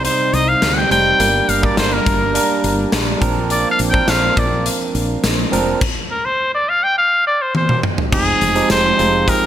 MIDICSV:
0, 0, Header, 1, 6, 480
1, 0, Start_track
1, 0, Tempo, 576923
1, 997, Time_signature, 4, 2, 24, 8
1, 7872, End_track
2, 0, Start_track
2, 0, Title_t, "Trumpet"
2, 0, Program_c, 0, 56
2, 41, Note_on_c, 0, 72, 92
2, 283, Note_on_c, 0, 75, 96
2, 295, Note_off_c, 0, 72, 0
2, 402, Note_on_c, 0, 77, 95
2, 414, Note_off_c, 0, 75, 0
2, 615, Note_on_c, 0, 78, 73
2, 627, Note_off_c, 0, 77, 0
2, 644, Note_on_c, 0, 79, 98
2, 656, Note_off_c, 0, 78, 0
2, 760, Note_off_c, 0, 79, 0
2, 764, Note_on_c, 0, 79, 112
2, 1244, Note_on_c, 0, 77, 93
2, 1256, Note_off_c, 0, 79, 0
2, 1368, Note_on_c, 0, 74, 91
2, 1381, Note_off_c, 0, 77, 0
2, 1483, Note_off_c, 0, 74, 0
2, 1487, Note_on_c, 0, 72, 88
2, 1606, Note_on_c, 0, 70, 85
2, 1619, Note_off_c, 0, 72, 0
2, 2322, Note_off_c, 0, 70, 0
2, 2927, Note_on_c, 0, 74, 93
2, 3071, Note_off_c, 0, 74, 0
2, 3089, Note_on_c, 0, 77, 100
2, 3159, Note_off_c, 0, 77, 0
2, 3248, Note_on_c, 0, 79, 101
2, 3407, Note_on_c, 0, 77, 100
2, 3420, Note_off_c, 0, 79, 0
2, 3649, Note_on_c, 0, 74, 81
2, 3662, Note_off_c, 0, 77, 0
2, 3883, Note_off_c, 0, 74, 0
2, 5084, Note_on_c, 0, 70, 83
2, 5203, Note_on_c, 0, 72, 93
2, 5215, Note_off_c, 0, 70, 0
2, 5440, Note_off_c, 0, 72, 0
2, 5447, Note_on_c, 0, 74, 92
2, 5567, Note_on_c, 0, 77, 99
2, 5579, Note_off_c, 0, 74, 0
2, 5687, Note_on_c, 0, 79, 105
2, 5699, Note_off_c, 0, 77, 0
2, 5802, Note_off_c, 0, 79, 0
2, 5808, Note_on_c, 0, 77, 100
2, 6026, Note_off_c, 0, 77, 0
2, 6049, Note_on_c, 0, 74, 94
2, 6172, Note_on_c, 0, 72, 87
2, 6184, Note_off_c, 0, 74, 0
2, 6284, Note_off_c, 0, 72, 0
2, 6292, Note_on_c, 0, 72, 84
2, 6508, Note_off_c, 0, 72, 0
2, 6768, Note_on_c, 0, 68, 103
2, 7209, Note_off_c, 0, 68, 0
2, 7249, Note_on_c, 0, 72, 115
2, 7731, Note_on_c, 0, 70, 108
2, 7743, Note_off_c, 0, 72, 0
2, 7872, Note_off_c, 0, 70, 0
2, 7872, End_track
3, 0, Start_track
3, 0, Title_t, "Tine electric piano"
3, 0, Program_c, 1, 4
3, 0, Control_c, 1, 64, 127
3, 0, Note_on_c, 1, 55, 70
3, 0, Note_on_c, 1, 60, 66
3, 0, Note_on_c, 1, 63, 65
3, 0, Note_on_c, 1, 72, 77
3, 291, Note_off_c, 1, 55, 0
3, 292, Note_off_c, 1, 60, 0
3, 294, Note_off_c, 1, 63, 0
3, 296, Note_off_c, 1, 72, 0
3, 750, Note_on_c, 1, 55, 69
3, 753, Note_on_c, 1, 60, 62
3, 756, Note_on_c, 1, 63, 60
3, 759, Note_on_c, 1, 72, 76
3, 968, Note_off_c, 1, 55, 0
3, 970, Note_off_c, 1, 60, 0
3, 971, Note_off_c, 1, 63, 0
3, 973, Note_off_c, 1, 72, 0
3, 990, Note_on_c, 1, 55, 72
3, 992, Note_on_c, 1, 58, 66
3, 996, Note_on_c, 1, 62, 65
3, 999, Note_on_c, 1, 70, 76
3, 1009, Control_c, 1, 64, 0
3, 1138, Control_c, 1, 64, 127
3, 1315, Note_off_c, 1, 55, 0
3, 1316, Note_off_c, 1, 58, 0
3, 1318, Note_off_c, 1, 62, 0
3, 1320, Note_off_c, 1, 70, 0
3, 1347, Note_on_c, 1, 55, 71
3, 1351, Note_on_c, 1, 58, 63
3, 1355, Note_on_c, 1, 62, 65
3, 1358, Note_on_c, 1, 70, 81
3, 1888, Note_off_c, 1, 55, 0
3, 1890, Note_off_c, 1, 58, 0
3, 1892, Note_off_c, 1, 62, 0
3, 1894, Note_off_c, 1, 70, 0
3, 1948, Note_on_c, 1, 55, 69
3, 1952, Note_on_c, 1, 58, 68
3, 1953, Note_on_c, 1, 62, 65
3, 1957, Note_on_c, 1, 70, 81
3, 2665, Note_off_c, 1, 62, 0
3, 2668, Note_off_c, 1, 70, 0
3, 2668, Note_on_c, 1, 53, 93
3, 2671, Note_on_c, 1, 60, 82
3, 2673, Note_off_c, 1, 55, 0
3, 2674, Note_off_c, 1, 58, 0
3, 2675, Note_on_c, 1, 62, 81
3, 2678, Note_on_c, 1, 70, 97
3, 2688, Control_c, 1, 64, 0
3, 2836, Control_c, 1, 64, 127
3, 3209, Note_off_c, 1, 53, 0
3, 3211, Note_off_c, 1, 60, 0
3, 3212, Note_off_c, 1, 62, 0
3, 3214, Note_off_c, 1, 70, 0
3, 3267, Note_on_c, 1, 53, 73
3, 3269, Note_on_c, 1, 60, 66
3, 3273, Note_on_c, 1, 62, 68
3, 3276, Note_on_c, 1, 70, 82
3, 4130, Note_off_c, 1, 53, 0
3, 4132, Note_off_c, 1, 60, 0
3, 4133, Note_off_c, 1, 62, 0
3, 4135, Note_off_c, 1, 70, 0
3, 4592, Note_on_c, 1, 53, 88
3, 4594, Note_on_c, 1, 60, 84
3, 4599, Note_on_c, 1, 62, 81
3, 4602, Note_on_c, 1, 70, 98
3, 4809, Note_off_c, 1, 53, 0
3, 4810, Note_off_c, 1, 60, 0
3, 4813, Note_off_c, 1, 62, 0
3, 4814, Note_off_c, 1, 70, 0
3, 4846, Control_c, 1, 64, 0
3, 6752, Note_on_c, 1, 53, 75
3, 6755, Note_on_c, 1, 56, 72
3, 6757, Note_on_c, 1, 60, 70
3, 6760, Note_on_c, 1, 63, 69
3, 6761, Note_on_c, 1, 68, 79
3, 6906, Control_c, 1, 64, 127
3, 7076, Note_off_c, 1, 53, 0
3, 7078, Note_off_c, 1, 56, 0
3, 7079, Note_off_c, 1, 60, 0
3, 7080, Note_off_c, 1, 63, 0
3, 7081, Note_off_c, 1, 68, 0
3, 7113, Note_on_c, 1, 53, 77
3, 7115, Note_on_c, 1, 56, 67
3, 7118, Note_on_c, 1, 60, 74
3, 7120, Note_on_c, 1, 63, 73
3, 7124, Note_on_c, 1, 67, 83
3, 7437, Note_off_c, 1, 53, 0
3, 7438, Note_off_c, 1, 56, 0
3, 7439, Note_off_c, 1, 60, 0
3, 7440, Note_off_c, 1, 63, 0
3, 7442, Note_off_c, 1, 67, 0
3, 7473, Note_on_c, 1, 53, 72
3, 7475, Note_on_c, 1, 56, 69
3, 7478, Note_on_c, 1, 60, 73
3, 7481, Note_on_c, 1, 63, 73
3, 7482, Note_on_c, 1, 65, 83
3, 7689, Note_off_c, 1, 53, 0
3, 7691, Note_off_c, 1, 56, 0
3, 7692, Note_off_c, 1, 60, 0
3, 7693, Note_off_c, 1, 63, 0
3, 7694, Note_off_c, 1, 65, 0
3, 7714, Note_on_c, 1, 53, 73
3, 7717, Note_on_c, 1, 56, 70
3, 7719, Note_on_c, 1, 60, 74
3, 7721, Note_on_c, 1, 63, 66
3, 7725, Note_on_c, 1, 68, 80
3, 7872, Note_off_c, 1, 53, 0
3, 7872, Note_off_c, 1, 56, 0
3, 7872, Note_off_c, 1, 60, 0
3, 7872, Note_off_c, 1, 63, 0
3, 7872, Note_off_c, 1, 68, 0
3, 7872, End_track
4, 0, Start_track
4, 0, Title_t, "Analog synth pad"
4, 0, Program_c, 2, 89
4, 0, Note_on_c, 2, 48, 78
4, 0, Note_on_c, 2, 55, 73
4, 0, Note_on_c, 2, 63, 83
4, 965, Note_off_c, 2, 55, 0
4, 977, Note_off_c, 2, 63, 0
4, 978, Note_off_c, 2, 48, 0
4, 998, Note_on_c, 2, 70, 85
4, 1000, Note_on_c, 2, 62, 68
4, 1002, Note_on_c, 2, 55, 77
4, 2661, Note_off_c, 2, 70, 0
4, 2662, Note_off_c, 2, 55, 0
4, 2674, Note_on_c, 2, 60, 75
4, 2675, Note_on_c, 2, 58, 80
4, 4805, Note_off_c, 2, 62, 0
4, 4814, Note_off_c, 2, 60, 0
4, 4815, Note_off_c, 2, 58, 0
4, 6758, Note_on_c, 2, 53, 77
4, 6758, Note_on_c, 2, 63, 74
4, 6759, Note_on_c, 2, 56, 93
4, 7872, Note_off_c, 2, 53, 0
4, 7872, Note_off_c, 2, 56, 0
4, 7872, Note_off_c, 2, 63, 0
4, 7872, End_track
5, 0, Start_track
5, 0, Title_t, "Fretless electric bass"
5, 0, Program_c, 3, 35
5, 278, Note_on_c, 3, 36, 92
5, 450, Note_off_c, 3, 36, 0
5, 518, Note_on_c, 3, 38, 83
5, 690, Note_off_c, 3, 38, 0
5, 756, Note_on_c, 3, 29, 93
5, 929, Note_off_c, 3, 29, 0
5, 996, Note_on_c, 3, 31, 108
5, 1169, Note_off_c, 3, 31, 0
5, 1236, Note_on_c, 3, 31, 87
5, 1409, Note_off_c, 3, 31, 0
5, 1475, Note_on_c, 3, 31, 102
5, 1649, Note_off_c, 3, 31, 0
5, 1718, Note_on_c, 3, 31, 86
5, 1977, Note_off_c, 3, 31, 0
5, 2197, Note_on_c, 3, 31, 97
5, 2370, Note_off_c, 3, 31, 0
5, 2438, Note_on_c, 3, 34, 88
5, 2610, Note_off_c, 3, 34, 0
5, 2676, Note_on_c, 3, 34, 98
5, 3022, Note_off_c, 3, 34, 0
5, 3158, Note_on_c, 3, 34, 92
5, 3331, Note_off_c, 3, 34, 0
5, 3396, Note_on_c, 3, 34, 94
5, 3569, Note_off_c, 3, 34, 0
5, 3637, Note_on_c, 3, 34, 99
5, 3896, Note_off_c, 3, 34, 0
5, 4116, Note_on_c, 3, 34, 95
5, 4289, Note_off_c, 3, 34, 0
5, 4359, Note_on_c, 3, 34, 90
5, 4531, Note_off_c, 3, 34, 0
5, 4600, Note_on_c, 3, 29, 96
5, 4772, Note_off_c, 3, 29, 0
5, 6760, Note_on_c, 3, 29, 113
5, 6931, Note_off_c, 3, 29, 0
5, 7001, Note_on_c, 3, 29, 92
5, 7172, Note_off_c, 3, 29, 0
5, 7240, Note_on_c, 3, 29, 97
5, 7412, Note_off_c, 3, 29, 0
5, 7482, Note_on_c, 3, 29, 101
5, 7739, Note_off_c, 3, 29, 0
5, 7872, End_track
6, 0, Start_track
6, 0, Title_t, "Drums"
6, 39, Note_on_c, 9, 42, 91
6, 122, Note_off_c, 9, 42, 0
6, 279, Note_on_c, 9, 42, 52
6, 363, Note_off_c, 9, 42, 0
6, 517, Note_on_c, 9, 38, 104
6, 519, Note_on_c, 9, 42, 81
6, 600, Note_off_c, 9, 38, 0
6, 602, Note_off_c, 9, 42, 0
6, 760, Note_on_c, 9, 42, 70
6, 844, Note_off_c, 9, 42, 0
6, 997, Note_on_c, 9, 42, 83
6, 1081, Note_off_c, 9, 42, 0
6, 1238, Note_on_c, 9, 42, 65
6, 1321, Note_off_c, 9, 42, 0
6, 1359, Note_on_c, 9, 36, 90
6, 1442, Note_off_c, 9, 36, 0
6, 1475, Note_on_c, 9, 38, 97
6, 1477, Note_on_c, 9, 42, 85
6, 1558, Note_off_c, 9, 38, 0
6, 1560, Note_off_c, 9, 42, 0
6, 1717, Note_on_c, 9, 42, 73
6, 1718, Note_on_c, 9, 36, 97
6, 1801, Note_off_c, 9, 36, 0
6, 1801, Note_off_c, 9, 42, 0
6, 1957, Note_on_c, 9, 42, 96
6, 2040, Note_off_c, 9, 42, 0
6, 2196, Note_on_c, 9, 42, 58
6, 2279, Note_off_c, 9, 42, 0
6, 2433, Note_on_c, 9, 38, 111
6, 2435, Note_on_c, 9, 42, 85
6, 2516, Note_off_c, 9, 38, 0
6, 2518, Note_off_c, 9, 42, 0
6, 2675, Note_on_c, 9, 36, 104
6, 2677, Note_on_c, 9, 42, 69
6, 2759, Note_off_c, 9, 36, 0
6, 2760, Note_off_c, 9, 42, 0
6, 2914, Note_on_c, 9, 42, 84
6, 2997, Note_off_c, 9, 42, 0
6, 3154, Note_on_c, 9, 42, 66
6, 3237, Note_off_c, 9, 42, 0
6, 3277, Note_on_c, 9, 36, 91
6, 3360, Note_off_c, 9, 36, 0
6, 3393, Note_on_c, 9, 38, 103
6, 3393, Note_on_c, 9, 54, 59
6, 3395, Note_on_c, 9, 42, 87
6, 3476, Note_off_c, 9, 38, 0
6, 3476, Note_off_c, 9, 54, 0
6, 3478, Note_off_c, 9, 42, 0
6, 3637, Note_on_c, 9, 36, 97
6, 3637, Note_on_c, 9, 42, 73
6, 3720, Note_off_c, 9, 36, 0
6, 3720, Note_off_c, 9, 42, 0
6, 3876, Note_on_c, 9, 42, 95
6, 3959, Note_off_c, 9, 42, 0
6, 4117, Note_on_c, 9, 42, 58
6, 4201, Note_off_c, 9, 42, 0
6, 4357, Note_on_c, 9, 38, 111
6, 4358, Note_on_c, 9, 54, 66
6, 4359, Note_on_c, 9, 42, 84
6, 4440, Note_off_c, 9, 38, 0
6, 4441, Note_off_c, 9, 54, 0
6, 4442, Note_off_c, 9, 42, 0
6, 4601, Note_on_c, 9, 42, 69
6, 4684, Note_off_c, 9, 42, 0
6, 4837, Note_on_c, 9, 36, 110
6, 4839, Note_on_c, 9, 49, 91
6, 4920, Note_off_c, 9, 36, 0
6, 4922, Note_off_c, 9, 49, 0
6, 6279, Note_on_c, 9, 48, 59
6, 6362, Note_off_c, 9, 48, 0
6, 6399, Note_on_c, 9, 47, 63
6, 6482, Note_off_c, 9, 47, 0
6, 6518, Note_on_c, 9, 45, 91
6, 6601, Note_off_c, 9, 45, 0
6, 6640, Note_on_c, 9, 43, 87
6, 6724, Note_off_c, 9, 43, 0
6, 6760, Note_on_c, 9, 36, 120
6, 6760, Note_on_c, 9, 49, 106
6, 6843, Note_off_c, 9, 36, 0
6, 6844, Note_off_c, 9, 49, 0
6, 7000, Note_on_c, 9, 42, 70
6, 7083, Note_off_c, 9, 42, 0
6, 7118, Note_on_c, 9, 42, 53
6, 7201, Note_off_c, 9, 42, 0
6, 7237, Note_on_c, 9, 38, 112
6, 7238, Note_on_c, 9, 54, 61
6, 7240, Note_on_c, 9, 42, 87
6, 7321, Note_off_c, 9, 38, 0
6, 7321, Note_off_c, 9, 54, 0
6, 7323, Note_off_c, 9, 42, 0
6, 7480, Note_on_c, 9, 42, 71
6, 7563, Note_off_c, 9, 42, 0
6, 7718, Note_on_c, 9, 36, 88
6, 7719, Note_on_c, 9, 42, 95
6, 7801, Note_off_c, 9, 36, 0
6, 7802, Note_off_c, 9, 42, 0
6, 7872, End_track
0, 0, End_of_file